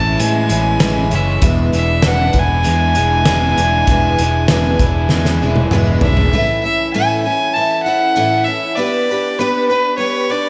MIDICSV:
0, 0, Header, 1, 6, 480
1, 0, Start_track
1, 0, Key_signature, 3, "major"
1, 0, Tempo, 610998
1, 1135, Time_signature, 4, 2, 24, 8
1, 8243, End_track
2, 0, Start_track
2, 0, Title_t, "Fiddle"
2, 0, Program_c, 0, 110
2, 0, Note_on_c, 0, 81, 116
2, 166, Note_off_c, 0, 81, 0
2, 171, Note_on_c, 0, 80, 99
2, 900, Note_on_c, 0, 76, 78
2, 911, Note_off_c, 0, 80, 0
2, 1138, Note_off_c, 0, 76, 0
2, 1375, Note_on_c, 0, 76, 93
2, 1620, Note_on_c, 0, 78, 107
2, 1632, Note_off_c, 0, 76, 0
2, 1872, Note_on_c, 0, 80, 105
2, 1884, Note_off_c, 0, 78, 0
2, 4508, Note_off_c, 0, 80, 0
2, 4730, Note_on_c, 0, 76, 77
2, 5183, Note_off_c, 0, 76, 0
2, 5212, Note_on_c, 0, 76, 81
2, 5439, Note_off_c, 0, 76, 0
2, 5448, Note_on_c, 0, 80, 92
2, 5676, Note_off_c, 0, 80, 0
2, 5682, Note_on_c, 0, 80, 98
2, 5918, Note_on_c, 0, 81, 93
2, 5930, Note_off_c, 0, 80, 0
2, 6146, Note_off_c, 0, 81, 0
2, 6150, Note_on_c, 0, 78, 94
2, 6630, Note_on_c, 0, 76, 83
2, 6642, Note_off_c, 0, 78, 0
2, 6874, Note_on_c, 0, 74, 91
2, 6885, Note_off_c, 0, 76, 0
2, 7376, Note_on_c, 0, 71, 92
2, 7387, Note_off_c, 0, 74, 0
2, 7605, Note_off_c, 0, 71, 0
2, 7610, Note_on_c, 0, 71, 96
2, 7833, Note_off_c, 0, 71, 0
2, 7841, Note_on_c, 0, 73, 96
2, 8092, Note_on_c, 0, 74, 98
2, 8104, Note_off_c, 0, 73, 0
2, 8243, Note_off_c, 0, 74, 0
2, 8243, End_track
3, 0, Start_track
3, 0, Title_t, "Twelve-string acoustic guitar"
3, 0, Program_c, 1, 25
3, 0, Note_on_c, 1, 56, 37
3, 0, Note_on_c, 1, 61, 41
3, 0, Note_on_c, 1, 64, 47
3, 133, Note_off_c, 1, 56, 0
3, 137, Note_on_c, 1, 52, 58
3, 138, Note_off_c, 1, 61, 0
3, 142, Note_on_c, 1, 56, 53
3, 146, Note_off_c, 1, 64, 0
3, 147, Note_on_c, 1, 61, 57
3, 155, Note_on_c, 1, 64, 66
3, 376, Note_off_c, 1, 64, 0
3, 385, Note_on_c, 1, 64, 58
3, 391, Note_off_c, 1, 61, 0
3, 395, Note_off_c, 1, 52, 0
3, 398, Note_off_c, 1, 56, 0
3, 401, Note_on_c, 1, 61, 51
3, 407, Note_on_c, 1, 56, 45
3, 623, Note_off_c, 1, 61, 0
3, 624, Note_on_c, 1, 45, 72
3, 625, Note_off_c, 1, 64, 0
3, 627, Note_on_c, 1, 52, 90
3, 630, Note_off_c, 1, 56, 0
3, 632, Note_on_c, 1, 61, 87
3, 635, Note_on_c, 1, 64, 81
3, 639, Note_on_c, 1, 56, 77
3, 861, Note_off_c, 1, 64, 0
3, 866, Note_off_c, 1, 61, 0
3, 871, Note_on_c, 1, 64, 57
3, 876, Note_on_c, 1, 61, 48
3, 880, Note_off_c, 1, 45, 0
3, 881, Note_off_c, 1, 52, 0
3, 883, Note_off_c, 1, 56, 0
3, 893, Note_on_c, 1, 56, 43
3, 1112, Note_on_c, 1, 47, 66
3, 1113, Note_off_c, 1, 56, 0
3, 1115, Note_on_c, 1, 40, 77
3, 1115, Note_on_c, 1, 52, 75
3, 1118, Note_off_c, 1, 64, 0
3, 1123, Note_on_c, 1, 56, 82
3, 1125, Note_off_c, 1, 61, 0
3, 1128, Note_on_c, 1, 62, 73
3, 1128, Note_on_c, 1, 64, 85
3, 1344, Note_off_c, 1, 64, 0
3, 1352, Note_off_c, 1, 62, 0
3, 1354, Note_on_c, 1, 64, 54
3, 1361, Note_on_c, 1, 62, 44
3, 1364, Note_off_c, 1, 47, 0
3, 1364, Note_off_c, 1, 56, 0
3, 1366, Note_off_c, 1, 40, 0
3, 1366, Note_off_c, 1, 52, 0
3, 1373, Note_on_c, 1, 56, 39
3, 1376, Note_on_c, 1, 52, 40
3, 1606, Note_off_c, 1, 64, 0
3, 1608, Note_off_c, 1, 52, 0
3, 1609, Note_off_c, 1, 62, 0
3, 1614, Note_on_c, 1, 40, 70
3, 1615, Note_off_c, 1, 56, 0
3, 1617, Note_on_c, 1, 52, 78
3, 1622, Note_on_c, 1, 47, 68
3, 1626, Note_on_c, 1, 62, 80
3, 1627, Note_on_c, 1, 56, 76
3, 1630, Note_on_c, 1, 64, 71
3, 1831, Note_off_c, 1, 64, 0
3, 1840, Note_on_c, 1, 64, 42
3, 1846, Note_off_c, 1, 62, 0
3, 1854, Note_off_c, 1, 56, 0
3, 1856, Note_off_c, 1, 40, 0
3, 1856, Note_on_c, 1, 62, 43
3, 1857, Note_off_c, 1, 52, 0
3, 1860, Note_off_c, 1, 47, 0
3, 1863, Note_on_c, 1, 56, 44
3, 1870, Note_on_c, 1, 52, 37
3, 2057, Note_off_c, 1, 52, 0
3, 2061, Note_off_c, 1, 56, 0
3, 2066, Note_on_c, 1, 52, 56
3, 2070, Note_on_c, 1, 56, 60
3, 2072, Note_off_c, 1, 62, 0
3, 2081, Note_on_c, 1, 62, 57
3, 2084, Note_off_c, 1, 64, 0
3, 2093, Note_on_c, 1, 64, 59
3, 2317, Note_off_c, 1, 64, 0
3, 2321, Note_off_c, 1, 62, 0
3, 2323, Note_off_c, 1, 52, 0
3, 2323, Note_off_c, 1, 56, 0
3, 2327, Note_on_c, 1, 64, 54
3, 2330, Note_on_c, 1, 62, 54
3, 2332, Note_on_c, 1, 56, 56
3, 2349, Note_on_c, 1, 52, 44
3, 2565, Note_off_c, 1, 62, 0
3, 2565, Note_on_c, 1, 40, 78
3, 2566, Note_off_c, 1, 52, 0
3, 2568, Note_on_c, 1, 47, 89
3, 2570, Note_off_c, 1, 56, 0
3, 2573, Note_off_c, 1, 64, 0
3, 2575, Note_on_c, 1, 62, 89
3, 2576, Note_on_c, 1, 52, 96
3, 2580, Note_on_c, 1, 56, 95
3, 2585, Note_on_c, 1, 64, 102
3, 2807, Note_off_c, 1, 64, 0
3, 2810, Note_off_c, 1, 62, 0
3, 2812, Note_off_c, 1, 40, 0
3, 2814, Note_off_c, 1, 47, 0
3, 2817, Note_on_c, 1, 64, 58
3, 2818, Note_off_c, 1, 52, 0
3, 2820, Note_off_c, 1, 56, 0
3, 2820, Note_on_c, 1, 62, 53
3, 2831, Note_on_c, 1, 56, 53
3, 2838, Note_on_c, 1, 52, 42
3, 3047, Note_off_c, 1, 52, 0
3, 3050, Note_on_c, 1, 40, 80
3, 3052, Note_on_c, 1, 47, 80
3, 3054, Note_off_c, 1, 64, 0
3, 3055, Note_off_c, 1, 56, 0
3, 3057, Note_on_c, 1, 52, 75
3, 3058, Note_off_c, 1, 62, 0
3, 3064, Note_on_c, 1, 64, 85
3, 3065, Note_on_c, 1, 56, 88
3, 3067, Note_on_c, 1, 62, 78
3, 3295, Note_off_c, 1, 40, 0
3, 3295, Note_off_c, 1, 64, 0
3, 3296, Note_off_c, 1, 47, 0
3, 3299, Note_off_c, 1, 52, 0
3, 3299, Note_off_c, 1, 62, 0
3, 3303, Note_off_c, 1, 56, 0
3, 3304, Note_on_c, 1, 64, 59
3, 3308, Note_on_c, 1, 62, 53
3, 3323, Note_on_c, 1, 56, 54
3, 3329, Note_on_c, 1, 52, 44
3, 3527, Note_on_c, 1, 40, 82
3, 3530, Note_off_c, 1, 52, 0
3, 3533, Note_on_c, 1, 47, 82
3, 3535, Note_off_c, 1, 64, 0
3, 3539, Note_off_c, 1, 56, 0
3, 3540, Note_off_c, 1, 62, 0
3, 3540, Note_on_c, 1, 52, 82
3, 3544, Note_on_c, 1, 64, 90
3, 3548, Note_on_c, 1, 56, 84
3, 3549, Note_on_c, 1, 62, 95
3, 3757, Note_off_c, 1, 64, 0
3, 3765, Note_off_c, 1, 62, 0
3, 3767, Note_on_c, 1, 64, 55
3, 3774, Note_off_c, 1, 40, 0
3, 3775, Note_on_c, 1, 62, 50
3, 3777, Note_off_c, 1, 47, 0
3, 3777, Note_off_c, 1, 56, 0
3, 3780, Note_off_c, 1, 52, 0
3, 3786, Note_on_c, 1, 56, 41
3, 3793, Note_on_c, 1, 52, 43
3, 4009, Note_off_c, 1, 52, 0
3, 4014, Note_off_c, 1, 64, 0
3, 4018, Note_off_c, 1, 62, 0
3, 4018, Note_on_c, 1, 52, 49
3, 4021, Note_off_c, 1, 56, 0
3, 4029, Note_on_c, 1, 62, 64
3, 4030, Note_on_c, 1, 56, 60
3, 4035, Note_on_c, 1, 64, 64
3, 4250, Note_off_c, 1, 64, 0
3, 4257, Note_off_c, 1, 62, 0
3, 4259, Note_on_c, 1, 64, 62
3, 4260, Note_off_c, 1, 52, 0
3, 4265, Note_off_c, 1, 56, 0
3, 4267, Note_on_c, 1, 62, 63
3, 4275, Note_on_c, 1, 56, 55
3, 4281, Note_on_c, 1, 52, 50
3, 4491, Note_off_c, 1, 52, 0
3, 4491, Note_off_c, 1, 56, 0
3, 4493, Note_on_c, 1, 40, 85
3, 4493, Note_on_c, 1, 47, 71
3, 4494, Note_off_c, 1, 62, 0
3, 4500, Note_off_c, 1, 64, 0
3, 4500, Note_on_c, 1, 52, 86
3, 4500, Note_on_c, 1, 56, 98
3, 4503, Note_on_c, 1, 62, 94
3, 4513, Note_on_c, 1, 64, 100
3, 4719, Note_off_c, 1, 64, 0
3, 4728, Note_on_c, 1, 64, 49
3, 4732, Note_off_c, 1, 62, 0
3, 4737, Note_off_c, 1, 40, 0
3, 4737, Note_off_c, 1, 47, 0
3, 4740, Note_off_c, 1, 52, 0
3, 4740, Note_off_c, 1, 56, 0
3, 4741, Note_on_c, 1, 62, 51
3, 4751, Note_on_c, 1, 52, 47
3, 4751, Note_on_c, 1, 56, 53
3, 4966, Note_off_c, 1, 52, 0
3, 4971, Note_on_c, 1, 45, 73
3, 4974, Note_off_c, 1, 64, 0
3, 4975, Note_on_c, 1, 52, 76
3, 4976, Note_off_c, 1, 56, 0
3, 4979, Note_off_c, 1, 62, 0
3, 4979, Note_on_c, 1, 57, 71
3, 4982, Note_on_c, 1, 61, 70
3, 4987, Note_on_c, 1, 64, 76
3, 5190, Note_off_c, 1, 64, 0
3, 5199, Note_on_c, 1, 64, 52
3, 5203, Note_off_c, 1, 61, 0
3, 5212, Note_on_c, 1, 61, 46
3, 5215, Note_off_c, 1, 45, 0
3, 5216, Note_off_c, 1, 57, 0
3, 5217, Note_off_c, 1, 52, 0
3, 5225, Note_on_c, 1, 57, 48
3, 5446, Note_off_c, 1, 57, 0
3, 5449, Note_off_c, 1, 64, 0
3, 5453, Note_on_c, 1, 52, 80
3, 5456, Note_off_c, 1, 61, 0
3, 5456, Note_on_c, 1, 45, 72
3, 5456, Note_on_c, 1, 57, 96
3, 5464, Note_on_c, 1, 64, 92
3, 5465, Note_on_c, 1, 61, 84
3, 5677, Note_off_c, 1, 64, 0
3, 5686, Note_on_c, 1, 64, 44
3, 5690, Note_off_c, 1, 61, 0
3, 5696, Note_off_c, 1, 52, 0
3, 5697, Note_off_c, 1, 45, 0
3, 5697, Note_off_c, 1, 57, 0
3, 5700, Note_on_c, 1, 61, 47
3, 5709, Note_on_c, 1, 57, 39
3, 5930, Note_off_c, 1, 57, 0
3, 5932, Note_off_c, 1, 64, 0
3, 5938, Note_on_c, 1, 52, 64
3, 5939, Note_off_c, 1, 61, 0
3, 5939, Note_on_c, 1, 57, 56
3, 5953, Note_on_c, 1, 61, 51
3, 5954, Note_on_c, 1, 64, 69
3, 6166, Note_off_c, 1, 64, 0
3, 6175, Note_on_c, 1, 64, 66
3, 6178, Note_off_c, 1, 52, 0
3, 6178, Note_off_c, 1, 57, 0
3, 6178, Note_off_c, 1, 61, 0
3, 6188, Note_on_c, 1, 57, 53
3, 6188, Note_on_c, 1, 61, 54
3, 6408, Note_on_c, 1, 52, 92
3, 6409, Note_off_c, 1, 64, 0
3, 6410, Note_off_c, 1, 57, 0
3, 6411, Note_off_c, 1, 61, 0
3, 6413, Note_on_c, 1, 45, 82
3, 6419, Note_on_c, 1, 57, 87
3, 6419, Note_on_c, 1, 64, 87
3, 6420, Note_on_c, 1, 61, 92
3, 6637, Note_off_c, 1, 64, 0
3, 6646, Note_off_c, 1, 61, 0
3, 6646, Note_on_c, 1, 64, 50
3, 6652, Note_off_c, 1, 52, 0
3, 6654, Note_off_c, 1, 45, 0
3, 6655, Note_off_c, 1, 57, 0
3, 6655, Note_on_c, 1, 61, 47
3, 6664, Note_on_c, 1, 57, 43
3, 6888, Note_on_c, 1, 59, 74
3, 6890, Note_off_c, 1, 64, 0
3, 6891, Note_off_c, 1, 57, 0
3, 6894, Note_on_c, 1, 62, 79
3, 6895, Note_off_c, 1, 61, 0
3, 6904, Note_on_c, 1, 67, 69
3, 6905, Note_on_c, 1, 71, 87
3, 7131, Note_off_c, 1, 59, 0
3, 7134, Note_off_c, 1, 62, 0
3, 7139, Note_off_c, 1, 67, 0
3, 7139, Note_off_c, 1, 71, 0
3, 7155, Note_on_c, 1, 71, 56
3, 7164, Note_on_c, 1, 67, 49
3, 7178, Note_on_c, 1, 62, 44
3, 7377, Note_on_c, 1, 59, 82
3, 7378, Note_off_c, 1, 62, 0
3, 7379, Note_off_c, 1, 67, 0
3, 7384, Note_off_c, 1, 71, 0
3, 7387, Note_on_c, 1, 62, 92
3, 7388, Note_on_c, 1, 67, 95
3, 7394, Note_on_c, 1, 71, 97
3, 7609, Note_off_c, 1, 71, 0
3, 7614, Note_off_c, 1, 59, 0
3, 7619, Note_off_c, 1, 62, 0
3, 7619, Note_on_c, 1, 71, 54
3, 7620, Note_off_c, 1, 67, 0
3, 7628, Note_on_c, 1, 67, 52
3, 7630, Note_on_c, 1, 62, 43
3, 7836, Note_off_c, 1, 62, 0
3, 7837, Note_on_c, 1, 59, 55
3, 7846, Note_on_c, 1, 62, 55
3, 7847, Note_off_c, 1, 67, 0
3, 7852, Note_off_c, 1, 71, 0
3, 7857, Note_on_c, 1, 67, 60
3, 7861, Note_on_c, 1, 71, 65
3, 8079, Note_off_c, 1, 71, 0
3, 8083, Note_off_c, 1, 59, 0
3, 8088, Note_off_c, 1, 62, 0
3, 8089, Note_on_c, 1, 71, 63
3, 8093, Note_off_c, 1, 67, 0
3, 8102, Note_on_c, 1, 67, 52
3, 8108, Note_on_c, 1, 62, 53
3, 8243, Note_off_c, 1, 62, 0
3, 8243, Note_off_c, 1, 67, 0
3, 8243, Note_off_c, 1, 71, 0
3, 8243, End_track
4, 0, Start_track
4, 0, Title_t, "Overdriven electric guitar"
4, 0, Program_c, 2, 29
4, 0, Note_on_c, 2, 45, 71
4, 0, Note_on_c, 2, 52, 69
4, 0, Note_on_c, 2, 56, 58
4, 0, Note_on_c, 2, 61, 67
4, 173, Note_off_c, 2, 56, 0
4, 176, Note_on_c, 2, 56, 72
4, 402, Note_off_c, 2, 52, 0
4, 405, Note_on_c, 2, 52, 67
4, 416, Note_off_c, 2, 45, 0
4, 644, Note_off_c, 2, 56, 0
4, 874, Note_off_c, 2, 61, 0
4, 1356, Note_off_c, 2, 52, 0
4, 8243, End_track
5, 0, Start_track
5, 0, Title_t, "Fingered electric bass"
5, 0, Program_c, 3, 33
5, 0, Note_on_c, 3, 33, 74
5, 148, Note_off_c, 3, 33, 0
5, 153, Note_on_c, 3, 45, 84
5, 392, Note_off_c, 3, 45, 0
5, 396, Note_on_c, 3, 33, 86
5, 632, Note_off_c, 3, 33, 0
5, 636, Note_on_c, 3, 33, 69
5, 876, Note_off_c, 3, 33, 0
5, 883, Note_on_c, 3, 30, 92
5, 1117, Note_off_c, 3, 30, 0
5, 1122, Note_on_c, 3, 28, 84
5, 1356, Note_off_c, 3, 28, 0
5, 1361, Note_on_c, 3, 28, 77
5, 1599, Note_off_c, 3, 28, 0
5, 1612, Note_on_c, 3, 28, 91
5, 1831, Note_off_c, 3, 28, 0
5, 1836, Note_on_c, 3, 28, 85
5, 2077, Note_off_c, 3, 28, 0
5, 2097, Note_on_c, 3, 40, 88
5, 2328, Note_off_c, 3, 40, 0
5, 2332, Note_on_c, 3, 28, 86
5, 2566, Note_off_c, 3, 28, 0
5, 2573, Note_on_c, 3, 28, 63
5, 2806, Note_off_c, 3, 28, 0
5, 2810, Note_on_c, 3, 28, 78
5, 3039, Note_off_c, 3, 28, 0
5, 3044, Note_on_c, 3, 28, 73
5, 3282, Note_off_c, 3, 28, 0
5, 3295, Note_on_c, 3, 28, 89
5, 3528, Note_off_c, 3, 28, 0
5, 3533, Note_on_c, 3, 28, 83
5, 3764, Note_off_c, 3, 28, 0
5, 3769, Note_on_c, 3, 28, 81
5, 4005, Note_off_c, 3, 28, 0
5, 4013, Note_on_c, 3, 40, 85
5, 4246, Note_off_c, 3, 40, 0
5, 4254, Note_on_c, 3, 28, 90
5, 4481, Note_off_c, 3, 28, 0
5, 4486, Note_on_c, 3, 28, 71
5, 4723, Note_off_c, 3, 28, 0
5, 4726, Note_on_c, 3, 28, 85
5, 4963, Note_off_c, 3, 28, 0
5, 8243, End_track
6, 0, Start_track
6, 0, Title_t, "Drums"
6, 153, Note_on_c, 9, 42, 91
6, 232, Note_off_c, 9, 42, 0
6, 388, Note_on_c, 9, 42, 66
6, 467, Note_off_c, 9, 42, 0
6, 630, Note_on_c, 9, 38, 106
6, 630, Note_on_c, 9, 42, 91
6, 708, Note_off_c, 9, 38, 0
6, 708, Note_off_c, 9, 42, 0
6, 874, Note_on_c, 9, 42, 71
6, 953, Note_off_c, 9, 42, 0
6, 1113, Note_on_c, 9, 42, 93
6, 1116, Note_on_c, 9, 36, 102
6, 1192, Note_off_c, 9, 42, 0
6, 1195, Note_off_c, 9, 36, 0
6, 1361, Note_on_c, 9, 42, 57
6, 1439, Note_off_c, 9, 42, 0
6, 1591, Note_on_c, 9, 38, 108
6, 1591, Note_on_c, 9, 42, 77
6, 1669, Note_off_c, 9, 38, 0
6, 1669, Note_off_c, 9, 42, 0
6, 1830, Note_on_c, 9, 42, 54
6, 1838, Note_on_c, 9, 36, 77
6, 1908, Note_off_c, 9, 42, 0
6, 1916, Note_off_c, 9, 36, 0
6, 2077, Note_on_c, 9, 42, 73
6, 2156, Note_off_c, 9, 42, 0
6, 2317, Note_on_c, 9, 42, 61
6, 2396, Note_off_c, 9, 42, 0
6, 2557, Note_on_c, 9, 38, 100
6, 2557, Note_on_c, 9, 42, 80
6, 2636, Note_off_c, 9, 38, 0
6, 2636, Note_off_c, 9, 42, 0
6, 2809, Note_on_c, 9, 42, 68
6, 2887, Note_off_c, 9, 42, 0
6, 3040, Note_on_c, 9, 42, 79
6, 3045, Note_on_c, 9, 36, 92
6, 3119, Note_off_c, 9, 42, 0
6, 3123, Note_off_c, 9, 36, 0
6, 3288, Note_on_c, 9, 42, 70
6, 3366, Note_off_c, 9, 42, 0
6, 3521, Note_on_c, 9, 38, 100
6, 3521, Note_on_c, 9, 42, 78
6, 3600, Note_off_c, 9, 38, 0
6, 3600, Note_off_c, 9, 42, 0
6, 3765, Note_on_c, 9, 42, 66
6, 3767, Note_on_c, 9, 36, 77
6, 3844, Note_off_c, 9, 42, 0
6, 3845, Note_off_c, 9, 36, 0
6, 3999, Note_on_c, 9, 38, 58
6, 4077, Note_off_c, 9, 38, 0
6, 4126, Note_on_c, 9, 38, 56
6, 4205, Note_off_c, 9, 38, 0
6, 4365, Note_on_c, 9, 48, 63
6, 4443, Note_off_c, 9, 48, 0
6, 4486, Note_on_c, 9, 47, 72
6, 4565, Note_off_c, 9, 47, 0
6, 4723, Note_on_c, 9, 43, 98
6, 4801, Note_off_c, 9, 43, 0
6, 4846, Note_on_c, 9, 43, 76
6, 4925, Note_off_c, 9, 43, 0
6, 8243, End_track
0, 0, End_of_file